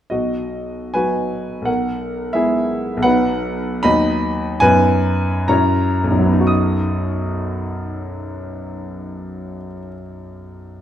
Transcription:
0.10 B1 F#4 D#5
0.94 F#3 B3 F#4 B4 G#5
1.62 B1 F#5
1.66 A#4
2.33 G#3 B3 E4 G#4 E5
2.97 B1
3.03 F#3 B3 D#4 B4 F#5
3.83 D#2 F#3 B3 D#4 D#5 B5
4.60 F#2 F#3 B3 D#4 B4 G#5
5.48 F#2 F#3 C#4 E4 C#5 A#5
6.04 B1
6.12 F#2
6.19 F#3
6.26 B3
6.33 D#4
6.41 F#4
6.47 D#6

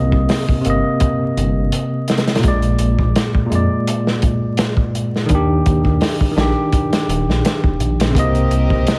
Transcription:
Already playing: C2 C3 A#3 D#5
0.12 C2, kick
0.29 snare, open hi-hat
0.49 kick
0.61 C3, closed hi-hat
0.65 G1 A#3
0.70 D#5
1.00 kick, closed hi-hat
1.37 G1, closed hi-hat
1.56 G1
1.72 closed hi-hat
2.08 snare, closed hi-hat
2.18 snare, closed hi-hat
2.27 snare, closed hi-hat
2.35 A#2, snare, closed hi-hat
2.43 A#1 G#3, kick, closed hi-hat
2.48 D5
2.62 closed hi-hat
2.79 A#1, closed hi-hat
2.99 A#1, kick
3.16 snare, closed hi-hat
3.35 kick
3.46 A#2
3.50 F2 G#3, closed hi-hat
3.55 D5
3.87 closed hi-hat
4.07 snare
4.22 kick, closed hi-hat
4.57 snare, closed hi-hat
4.77 kick
4.95 closed hi-hat
5.16 snare
5.26 D#3, kick, closed hi-hat
5.30 D#2 D4
5.35 G4
5.66 D#2, kick, closed hi-hat
5.85 D#2, kick
6.01 snare, open hi-hat
6.21 kick
6.32 D#3
6.36 A#1 D4, snare, closed hi-hat
6.41 G4
6.72 kick, closed hi-hat
6.93 snare, closed hi-hat
7.08 D#1, closed hi-hat
7.28 A#1, snare
7.45 snare, closed hi-hat
7.64 D#1, kick
7.79 A#1, closed hi-hat
7.99 A#1, snare, closed hi-hat
8.11 C3
8.15 C2 A#3 C4 G4 A#4 D#5, kick, closed hi-hat
8.20 D#5
8.35 closed hi-hat
8.51 C2, closed hi-hat
8.70 C2, kick
8.87 snare, closed hi-hat

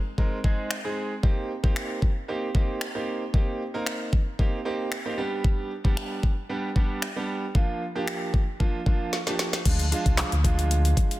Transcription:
0.18 G#3 C4 D#4 A#4, kick
0.44 G#3 C4 D#4 G#4, kick
0.71 finger snap
0.84 G#3 C4 D#4 G#4
1.23 A#3 C4 D#4 G4, kick
1.63 A#3 C4 D#4 G4, kick
1.76 finger snap
2.02 kick
2.28 A#3 C4 D#4 G4
2.55 A#3 C4 D#4 G4, kick
2.81 finger snap
2.95 A#3 C4 D#4 G4
3.34 A#3 C4 D#4 G4, kick
3.74 A#3 C4 D#4 A#4
3.86 finger snap
4.13 kick
4.39 A#3 C4 D#4 G4, kick
4.65 A#3 C4 D#4 G4
4.92 finger snap
5.05 A#3 C4 D#4 G4
5.17 G3 B3 D4 G4
5.44 kick
5.84 G3 B3 D4 G4, kick
5.97 finger snap
6.23 kick
6.49 G3 B3 D4 G4
6.76 G3 B3 D4 G4, kick
7.02 finger snap
7.16 G3 B3 D4 G4
7.55 F3 A#3 D4 F4, kick
7.95 F3 A#3 D4 G4
8.08 finger snap
8.34 kick
8.60 F3 A#3 D4 F4, kick
8.86 F3 A#3 D4 F4, kick
9.13 snare
9.27 F3 A#3 D4 G4, snare
9.39 snare
9.53 snare
9.65 D2 F3 G#3 D4 F4, kick, closed hi-hat, crash
9.79 closed hi-hat
9.92 F3 G#3 D4 F4, closed hi-hat
10.06 C2, kick, closed hi-hat
10.17 snare, clap, closed hi-hat
10.32 D2, closed hi-hat
10.44 F3 G#3 D4 F4, kick, closed hi-hat
10.59 closed hi-hat
10.71 closed hi-hat
10.85 closed hi-hat
10.97 kick, closed hi-hat
11.11 closed hi-hat

